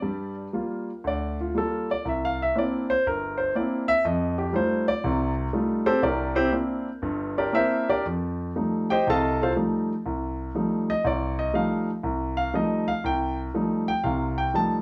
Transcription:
0.00 0.47 G2 medium
0.00 0.47 G3 medium
0.00 0.34 D5 medium
0.53 0.89 G3 medium
0.53 0.89 A#3 soft
0.53 0.90 F4 medium
1.04 1.48 D2 medium
1.04 1.39 D5 medium
1.41 1.54 F4 medium
1.55 1.90 G3 medium
1.55 1.91 A#3 soft
1.55 1.91 F4 medium
1.55 1.89 A4 medium
1.91 2.06 D5 medium
2.05 2.49 C2 medium
2.05 2.23 E5 medium
2.25 2.40 F5 medium
2.42 2.57 E5 medium
2.55 2.91 A#3 medium
2.55 2.91 C4 soft
2.55 2.91 D4 medium
2.55 2.91 E4 medium
2.55 2.90 D5 medium
2.90 3.05 C5 loud
3.06 3.49 G1 medium
3.06 3.39 A#4 medium
3.38 3.54 C5 medium
3.55 3.90 A#3 medium
3.55 3.90 C4 soft
3.55 3.90 D4 soft
3.55 3.91 E4 medium
3.55 3.88 D5 medium
3.88 4.04 E5 loud
4.05 4.47 F2 medium
4.05 4.37 D#5 medium
4.38 4.53 G4 medium
4.53 4.88 G3 medium
4.53 4.88 A3 medium
4.53 4.88 D#4 soft
4.53 4.89 F4 medium
4.53 4.87 C5 medium
4.88 5.34 D5 loud
5.04 5.47 C2 medium
5.04 5.46 C3 medium
5.53 5.88 G3 medium
5.53 5.88 A3 medium
5.53 5.88 D#4 medium
5.53 5.88 F4 medium
5.86 6.02 C4 medium
5.86 6.02 G4 medium
5.86 6.02 A4 medium
5.86 6.02 C5 loud
6.02 6.46 C2 medium
6.02 6.36 D4 medium
6.02 6.35 G4 medium
6.02 6.36 A#4 medium
6.02 6.35 D5 medium
6.35 6.50 C4 medium
6.35 6.51 E4 medium
6.35 6.52 G4 medium
6.35 6.52 C5 medium
6.52 6.88 A#3 medium
6.52 6.88 C4 medium
6.52 6.88 D4 medium
6.52 6.88 E4 medium
7.02 7.47 G1 medium
7.02 7.47 G2 medium
7.38 7.52 D4 medium
7.38 7.54 G4 medium
7.38 7.54 A#4 medium
7.38 7.54 D5 medium
7.53 7.90 A#3 medium
7.53 7.90 C4 medium
7.53 7.88 D4 medium
7.53 7.90 E4 medium
7.53 7.88 A#4 medium
7.53 7.88 C5 medium
7.53 7.88 E5 medium
7.89 8.05 D4 medium
7.89 8.05 G4 medium
7.89 8.05 A#4 medium
7.89 8.05 D5 medium
8.05 8.50 F2 medium
8.56 8.92 F3 soft
8.56 8.92 G3 soft
8.56 8.92 A3 soft
8.56 8.92 D#4 medium
8.90 9.06 G4 medium
8.90 9.07 C5 medium
8.90 9.07 D#5 medium
8.90 9.06 G5 medium
9.07 9.50 C2 medium
9.07 9.50 C3 medium
9.07 9.41 A4 medium
9.07 9.41 D#5 medium
9.07 9.41 F5 medium
9.07 9.41 A5 loud
9.43 9.52 F4 medium
9.43 9.52 A4 medium
9.43 9.52 C5 medium
9.43 9.52 F5 medium
9.56 9.92 F3 soft
9.56 9.92 G3 soft
9.56 9.92 A3 soft
9.56 9.92 D#4 medium
10.06 10.49 C2 medium
10.55 10.90 F3 medium
10.55 10.90 G3 soft
10.55 10.91 A3 soft
10.55 10.90 D#4 medium
10.90 11.05 D#5 medium
11.04 11.48 C2 medium
11.04 11.38 D5 medium
11.39 11.54 D#5 medium
11.53 11.89 F3 medium
11.53 11.89 G3 medium
11.53 11.89 A3 soft
11.53 11.89 D#4 medium
11.53 11.87 F5 medium
12.03 12.47 C2 medium
12.37 12.53 F5 medium
12.54 12.89 F3 medium
12.54 12.89 G3 soft
12.54 12.89 A3 soft
12.54 12.89 D#4 medium
12.54 12.87 D#5 medium
12.88 13.03 F5 medium
13.04 13.47 C2 medium
13.04 13.38 G5 medium
13.54 13.89 F3 medium
13.54 13.90 G3 soft
13.54 13.90 A3 soft
13.54 13.90 D#4 medium
13.88 14.04 G5 medium
14.04 14.48 C2 medium
14.04 14.48 C3 medium
14.04 14.37 F5 medium
14.38 14.54 G5 medium
14.54 14.82 F3 soft
14.54 14.82 G3 soft
14.54 14.82 A3 soft
14.54 14.82 D#4 medium
14.54 14.76 A5 medium

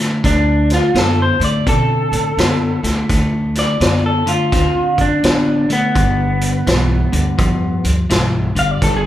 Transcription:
0.00 0.21 D3 medium
0.00 0.21 A3 medium
0.24 0.76 D2 medium
0.24 0.90 D3 medium
0.24 0.90 A3 medium
0.24 0.71 D4 medium
0.24 kick loud
0.24 snare soft
0.24 closed hi-hat medium
0.70 snare soft
0.70 closed hi-hat medium
0.74 0.96 F4 medium
0.94 1.28 F#2 medium
0.94 1.36 D3 medium
0.94 1.36 B3 medium
0.94 snare loud
0.94 closed hi-hat medium
0.99 1.20 A4 medium
1.22 1.44 C5 medium
1.40 1.59 A2 medium
1.40 1.64 D3 medium
1.40 1.64 A3 medium
1.40 closed hi-hat medium
1.44 1.67 D5 medium
1.66 2.00 B2 medium
1.66 2.33 D3 medium
1.66 2.33 C4 medium
1.66 3.06 A4 medium
1.66 kick loud
1.66 closed hi-hat medium
2.12 2.30 A2 medium
2.12 closed hi-hat medium
2.37 2.70 F#2 medium
2.37 2.79 D3 medium
2.37 2.79 B3 medium
2.37 snare loud
2.37 closed hi-hat medium
2.83 3.02 D2 medium
2.83 3.07 D3 medium
2.83 3.07 A3 medium
2.83 snare soft
2.83 closed hi-hat medium
3.09 3.61 D2 medium
3.09 3.76 D3 medium
3.09 3.76 A3 medium
3.09 kick loud
3.09 snare soft
3.09 closed hi-hat medium
3.55 4.04 D5 medium
3.55 snare soft
3.55 closed hi-hat medium
3.80 4.32 F#2 medium
3.80 4.22 D3 medium
3.80 4.22 B3 medium
3.80 snare medium
3.80 closed hi-hat medium
4.06 4.28 A4 medium
4.26 4.49 D3 medium
4.26 4.50 A3 medium
4.26 4.98 F4 medium
4.26 closed hi-hat medium
4.52 4.85 D2 medium
4.52 5.19 D3 medium
4.52 5.19 C4 medium
4.52 kick loud
4.52 snare soft
4.52 closed hi-hat medium
4.98 5.17 F#2 medium
4.98 5.70 D4 medium
4.98 kick medium
4.98 closed hi-hat medium
5.23 5.75 A1 medium
5.23 5.65 D3 medium
5.23 5.65 B3 medium
5.23 snare loud
5.23 closed hi-hat medium
5.69 5.92 D3 medium
5.69 5.93 A3 medium
5.69 7.83 B3 medium
5.69 closed hi-hat medium
5.95 6.47 G1 medium
5.95 6.62 G2 medium
5.95 6.62 D3 medium
5.95 kick loud
5.95 closed hi-hat medium
6.41 closed hi-hat medium
6.67 7.00 B1 medium
6.67 7.08 G2 medium
6.67 7.08 E3 medium
6.67 snare loud
6.67 closed hi-hat medium
7.12 7.31 D2 medium
7.12 7.36 G2 medium
7.12 7.36 D3 medium
7.12 closed hi-hat medium
7.38 7.72 E2 medium
7.38 8.04 G2 medium
7.38 8.05 F3 medium
7.38 kick loud
7.38 closed hi-hat medium
7.84 8.03 D2 medium
7.84 closed hi-hat medium
8.10 8.43 B1 medium
8.10 8.51 G2 medium
8.10 8.51 E3 medium
8.10 snare loud
8.10 closed hi-hat medium
8.55 8.74 G1 medium
8.55 8.79 G2 medium
8.55 8.79 D3 medium
8.55 8.71 F5 medium
8.55 closed hi-hat medium
8.71 8.80 D5 loud
8.81 9.06 G1 medium
8.81 9.06 G2 medium
8.81 9.06 D3 medium
8.81 8.98 A4 medium
8.81 kick loud
8.81 snare soft
8.81 closed hi-hat medium
8.96 9.06 G#4 medium

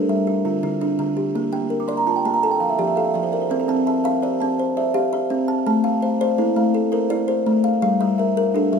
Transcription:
0.00 0.27 D4 medium
0.00 0.45 A4 medium
0.00 0.45 A#4 medium
0.09 0.27 G3 medium
0.09 0.63 E5 medium
0.27 0.80 F4 medium
0.45 0.81 D3 medium
0.45 0.99 F4 medium
0.63 0.98 D3 medium
0.63 1.17 E4 medium
0.81 1.35 D4 medium
0.81 1.35 F4 medium
0.99 1.35 D3 medium
1.17 1.53 G4 medium
1.35 1.71 A#3 medium
1.35 1.71 G4 medium
1.53 1.89 A#3 medium
1.53 2.07 G5 medium
1.70 2.25 A#4 medium
1.80 1.97 D6 medium
1.88 2.25 D5 medium
1.88 2.05 C6 medium
1.97 2.15 A#5 medium
2.07 2.43 F4 medium
2.07 2.24 A5 medium
2.16 2.33 G5 medium
2.25 2.43 A#3 medium
2.25 2.42 A5 medium
2.34 2.51 A#5 medium
2.43 2.96 A4 medium
2.43 2.60 A5 medium
2.51 2.69 G5 medium
2.60 2.97 F3 medium
2.60 2.77 F5 medium
2.69 2.86 E5 medium
2.78 3.14 F3 medium
2.78 3.33 G4 medium
2.78 2.96 D5 medium
2.87 3.04 E5 medium
2.96 3.51 A4 medium
2.96 3.13 F5 medium
3.05 3.22 E5 medium
3.14 3.51 F3 medium
3.14 3.31 D5 medium
3.23 3.40 C5 medium
3.32 3.69 A#4 medium
3.32 3.49 D5 medium
3.42 3.59 C5 medium
3.50 3.87 C4 medium
3.50 3.68 A#4 medium
3.60 3.77 A4 medium
3.68 4.05 C4 medium
3.68 4.23 A5 medium
3.87 4.04 E5 medium
3.87 4.39 A5 medium
4.04 4.41 E5 medium
4.04 4.59 F5 medium
4.22 4.59 G4 medium
4.22 4.76 C5 medium
4.22 4.76 D5 medium
4.40 4.77 C4 medium
4.40 4.95 A5 medium
4.59 5.13 C5 medium
4.77 5.12 C5 medium
4.77 5.31 D5 medium
4.77 5.13 E5 medium
4.94 5.31 G4 medium
4.94 5.49 F5 medium
5.13 5.67 C5 medium
5.13 5.67 E5 medium
5.30 5.67 C4 medium
5.48 5.84 A5 medium
5.67 6.03 A3 medium
5.67 6.03 A5 medium
5.84 6.20 A3 medium
5.84 6.38 F5 medium
6.02 6.20 C5 medium
6.02 6.56 F5 medium
6.21 6.57 C5 medium
6.21 6.75 D5 medium
6.38 6.92 A#3 medium
6.38 6.74 E4 medium
6.38 6.91 A4 medium
6.56 6.92 A3 medium
6.56 7.11 F5 medium
6.74 7.28 A4 medium
6.92 7.27 A4 medium
6.92 7.47 A#4 medium
6.92 7.28 C5 medium
7.10 7.46 E4 medium
7.10 7.64 D5 medium
7.28 7.82 A4 medium
7.28 7.82 C5 medium
7.46 7.82 A3 medium
7.64 8.00 F5 medium
7.82 8.18 G3 medium
7.82 8.18 F5 medium
8.01 8.36 G3 medium
8.01 8.54 E5 medium
8.18 8.36 A#4 medium
8.18 8.71 E5 medium
8.37 8.73 A#4 medium
8.54 8.79 D4 medium
8.54 8.79 G4 medium
8.54 8.79 A4 medium
8.72 8.79 G3 medium
8.72 8.79 E5 medium

